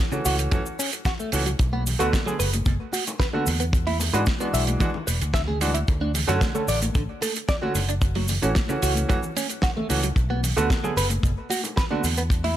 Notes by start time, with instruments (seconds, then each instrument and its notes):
0.11 clean electric guitar C#3, grand piano E3 A3 C#4 F#4, cabasa
0.25 fingered electric bass C#2, clean electric guitar F#4, open hi-hat, cabasa
0.39 closed hi-hat, cabasa
0.51 clean electric guitar F#2, grand piano E3 A3 C#4 F#4, kick, closed hi-hat, cabasa
0.66 cabasa
0.79 clean electric guitar C#4, open hi-hat, cabasa
0.93 closed hi-hat, cabasa
1.05 clean electric guitar F#4, kick, snare, closed hi-hat, cabasa
1.20 clean electric guitar A3, cabasa
1.32 fingered electric bass C#2, grand piano E3 A3 C#4 F#4, open hi-hat, cabasa
1.46 clean electric guitar F#3, closed hi-hat, cabasa
1.59 fingered electric bass B1, kick, closed hi-hat, high bongo, cabasa
1.73 clean electric guitar B3, high conga, cabasa
1.87 open hi-hat, low conga, cabasa
1.99 fingered electric bass D2, grand piano D3 A3 B3 F#4, clean electric guitar F#4, closed hi-hat, cabasa
2.13 kick, snare, closed hi-hat, high bongo, high conga, cabasa
2.26 grand piano D3 A3 B3 G#4, clean electric guitar F#3, cabasa
2.39 fingered electric bass F#1, clean electric guitar B4, open hi-hat, cabasa
2.53 closed hi-hat, high bongo, high conga, cabasa
2.66 fingered electric bass F#1, clean electric guitar B2, kick, closed hi-hat, cabasa
2.80 cabasa
2.93 clean electric guitar F#4, open hi-hat, high conga, cabasa
3.07 closed hi-hat, high bongo, cabasa
3.20 clean electric guitar B4, kick, snare, closed hi-hat, cabasa
3.33 grand piano D3 A3 B3 F#4, clean electric guitar D4, high conga, cabasa
3.47 fingered electric bass E2, open hi-hat, high bongo, cabasa
3.60 clean electric guitar B3, closed hi-hat, cabasa
3.73 kick, closed hi-hat, cabasa
3.87 clean electric guitar E4, open hi-hat, high conga, cabasa
4.00 open hi-hat, high bongo, low conga, cabasa
4.13 fingered electric bass G#2, grand piano E3 G#3 D4 F#4, clean electric guitar B4, closed hi-hat, cabasa
4.26 kick, snare, closed hi-hat, high conga, cabasa
4.40 grand piano E3 G#3 D4 F#4, clean electric guitar B3, high bongo, cabasa
4.54 fingered electric bass B1, clean electric guitar E5, open hi-hat, cabasa
4.67 closed hi-hat, high conga, cabasa
4.80 grand piano E3 G#3 D4 F#4, clean electric guitar E3, kick, closed hi-hat, cabasa
4.94 muted fingered electric bass stroke, high bongo, low conga, cabasa
5.07 fingered electric bass E1, clean electric guitar B4, open hi-hat, high conga, cabasa
5.21 fingered electric bass D2, closed hi-hat, cabasa
5.34 clean electric guitar E5, kick, snare, closed hi-hat, high bongo, cabasa
5.47 clean electric guitar G#4, high conga, low conga, cabasa
5.61 grand piano E3 G#3 D4 F#4, open hi-hat, cabasa
5.74 clean electric guitar E4, closed hi-hat, cabasa
5.87 fingered electric bass D2, kick, closed hi-hat, high bongo, cabasa
6.01 clean electric guitar D4, high conga, cabasa
6.14 open hi-hat, low conga, cabasa
6.28 fingered electric bass F#2, grand piano D3 A3 C#4 F#4, clean electric guitar A4, closed hi-hat, high bongo, cabasa
6.41 kick, snare, closed hi-hat, high conga, cabasa
6.54 grand piano D3 A3 C#4 A4, clean electric guitar A3, cabasa
6.68 fingered electric bass A1, clean electric guitar D5, open hi-hat, cabasa
6.82 closed hi-hat, high bongo, high conga, cabasa
6.95 fingered electric bass A1, clean electric guitar D3, kick, closed hi-hat, cabasa
7.09 cabasa
7.22 clean electric guitar A4, open hi-hat, high bongo, high conga, cabasa
7.36 closed hi-hat, cabasa
7.49 clean electric guitar D5, kick, snare, closed hi-hat, cabasa
7.62 grand piano D3 A3 C#4 F#4, clean electric guitar F#4, high conga, cabasa
7.75 fingered electric bass F#1, open hi-hat, high bongo, cabasa
7.89 clean electric guitar D4, closed hi-hat, cabasa
8.02 kick, closed hi-hat, cabasa
8.15 clean electric guitar F#3, open hi-hat, high bongo, high conga, cabasa
8.28 open hi-hat, low conga, cabasa
8.42 fingered electric bass A1, grand piano E3 A3 C#4 F#4, clean electric guitar C#4, closed hi-hat, cabasa
8.55 kick, snare, closed hi-hat, high conga, cabasa
8.69 clean electric guitar C#3, grand piano E3 A3 C#4 F#4, high bongo, cabasa
8.82 fingered electric bass C#2, clean electric guitar F#4, open hi-hat, cabasa
8.95 closed hi-hat, high conga, cabasa
9.09 clean electric guitar F#2, grand piano E3 A3 C#4 F#4, kick, closed hi-hat, high bongo, cabasa
9.23 low conga, cabasa
9.36 clean electric guitar C#4, open hi-hat, high conga, cabasa
9.49 closed hi-hat, cabasa
9.62 clean electric guitar F#4, kick, snare, closed hi-hat, high bongo, cabasa
9.77 clean electric guitar A3, high conga, low conga, cabasa
9.89 fingered electric bass C#2, grand piano E3 A3 C#4 F#4, open hi-hat, cabasa
10.03 clean electric guitar F#3, closed hi-hat, high bongo, cabasa
10.16 fingered electric bass B1, kick, closed hi-hat, high bongo, cabasa
10.30 clean electric guitar B3, high conga, cabasa
10.43 open hi-hat, low conga, cabasa
10.57 fingered electric bass D2, grand piano D3 A3 B3 F#4, clean electric guitar F#4, closed hi-hat, cabasa
10.69 kick, snare, closed hi-hat, high bongo, high conga, cabasa
10.71 cabasa
10.83 grand piano D3 A3 B3 G#4, clean electric guitar F#3, cabasa
10.96 fingered electric bass F#1, clean electric guitar B4, open hi-hat, cabasa
10.98 cabasa
11.10 closed hi-hat, high bongo, high conga, cabasa
11.23 fingered electric bass F#1, clean electric guitar B2, kick, closed hi-hat, cabasa
11.25 cabasa
11.37 cabasa
11.49 clean electric guitar F#4, open hi-hat, high conga, cabasa
11.52 cabasa
11.63 closed hi-hat, high bongo, cabasa
11.77 clean electric guitar B4, kick, snare, closed hi-hat, cabasa
11.90 grand piano D3 A3 B3 F#4, clean electric guitar D4, high conga, cabasa
12.04 fingered electric bass E2, open hi-hat, high bongo, cabasa
12.17 clean electric guitar B3, closed hi-hat, cabasa
12.30 kick, closed hi-hat, cabasa
12.44 clean electric guitar E4, open hi-hat, high conga, cabasa